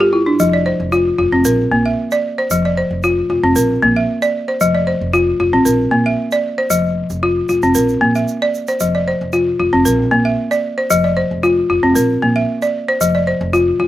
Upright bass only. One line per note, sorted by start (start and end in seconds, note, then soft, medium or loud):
0.00 0.28 G1 medium
0.40 0.71 F1 medium
0.80 1.10 F1 medium
1.19 1.29 F1 medium
1.32 1.42 F1 medium
1.45 1.65 A#1 loud
1.71 1.92 A#1 medium
2.50 2.81 F1 medium
2.91 3.21 F1 medium
3.29 3.40 F1 medium
3.43 3.53 F1 loud
3.56 3.76 A#1 loud
3.82 4.03 A#1 medium
4.61 4.92 F1 medium
5.01 5.31 F1 medium
5.40 5.50 F1 loud
5.53 5.63 A1 loud
5.66 5.86 A#1 loud
5.92 6.12 A#1 medium
6.70 7.01 F1 medium
7.10 7.40 F1 medium
7.49 7.60 F1 medium
7.63 7.73 F1 medium
7.76 7.96 A#1 loud
8.02 8.22 A#1 medium
8.81 9.12 F1 medium
9.21 9.51 F1 medium
9.60 9.70 F1 medium
9.74 9.83 F1 medium
9.86 10.06 A#1 loud
10.13 10.33 A#1 medium
10.91 11.22 F1 medium
11.31 11.61 F1 medium
11.70 11.80 F1 medium
11.84 11.93 F1 medium
11.96 12.16 A#1 loud
12.22 12.42 A#1 medium
13.01 13.31 F1 medium
13.41 13.71 F1 loud
13.80 13.88 F1 medium